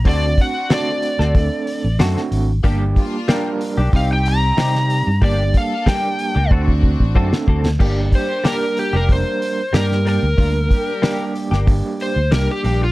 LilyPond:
<<
  \new Staff \with { instrumentName = "Electric slide guitar" } { \time 4/4 \key g \minor \tempo 4 = 93 d''8 fis''8 d''2 r4 | r2 f''16 g''16 bes''4. | d''8 f''8 g''4 r2 | r8 c''8 bes'8 g'16 bes'16 c''4 bes'8 bes'8~ |
bes'4. r4 c''8 bes'16 g'8 f'16 | }
  \new Staff \with { instrumentName = "Clean electric guitar" } { \time 4/4 \key g \minor <d c' fis' a'>16 r8. <d c' fis' a'>16 r8 <c' fis' a'>16 r4 <d c' fis' a'>16 r8. | <g bes d' g'>16 r8. <g bes d' g'>16 r8 <bes d' g'>16 <c c' ees' g'>16 r8. <c c' ees' g'>16 r8. | <g bes d' g'>16 r8. <g bes d' g'>16 r8 <bes d' g'>16 <d c' fis' a'>16 r8. <d c' fis' a'>16 r16 <d c' fis' a'>16 r16 | <g bes d' g'>16 r8. <g bes d' g'>16 r8 <bes d' g'>16 r4 <g bes d' g'>16 r16 <g bes d' g'>16 r16 |
r4 <g bes d' g'>16 r8 <bes d' g'>16 r4 <g bes d' g'>16 r16 <g bes d' g'>16 r16 | }
  \new Staff \with { instrumentName = "String section" } { \time 4/4 \key g \minor <c' d' fis'>16 r16 <c' d' fis'>4 r2 r8 | <bes d' g'>16 r16 <bes d' f'>4 r8 <c' ees' g'>4. r8 | <bes d' g'>16 r16 <bes d' a'>4 r8 <c' d' fis'>4. r8 | <g bes d' g'>16 r16 <g bes d' g'>4 r2 r8 |
<g bes d' f'>16 r16 <g bes d' g'>4 r2 r8 | }
  \new Staff \with { instrumentName = "Tine electric piano" } { \time 4/4 \key g \minor <a c' d' fis'>4 <a c' d' fis'>4 <a c' d' a'>4 <a c' d' fis'>4 | <g bes d' g'>4 <g bes d' bes'>4 <g c' ees' g'>4 <g c' ees' g'>4 | <g bes d' g'>4 <g bes d' g'>4 <a c' d' fis'>4 <a c' d' a'>4 | <g bes d' g'>4 <g bes d' bes'>4 <g bes d' bes'>4 <g bes d' g'>4 |
<g bes d' bes'>4 <g bes d' g'>4 <g bes d' g'>4 <g bes d' g'>4 | }
  \new Staff \with { instrumentName = "Fingered electric bass" } { \clef bass \time 4/4 \key g \minor d,8 r4 r16 d,8 r8 a,,16 fis,16 r16 aes,,8 | g,,8 r4 r16 b,,16 c,4 c8. g,16 | g,,8 r4 r16 cis,16 d,8. a,,16 fis,16 r16 d,8 | g,,8 r4 r16 f,,8 r8. g,8. d,16 |
d,8 r4 r16 g,,8 r8 d,16 c,16 r16 bes,,8 | }
  \new DrumStaff \with { instrumentName = "Drums" } \drummode { \time 4/4 <hho bd>8 <hho bd>8 <hho sn>8 hho16 sn16 <hho bd>8 hho8 <hho sn>16 sn16 hho8 | <hho bd>8 <hho bd>8 <hho sn>8 hho8 <hho bd>8 hho8 <hho sn>16 sn16 hho8 | <hho bd>8 <hho bd>8 <hho bd sn>8 hho8 bd16 bd16 bd16 bd16 bd16 sn16 bd16 sn16 | <cymc bd>8 <hho bd>8 <hho sn>8 hho8 <hho bd>8 hho8 <hho sn>16 sn16 hho8 |
<hho bd>8 <hho bd>8 <hho sn>8 hho16 sn16 <hho bd>8 hho8 <hho sn>8 hho8 | }
>>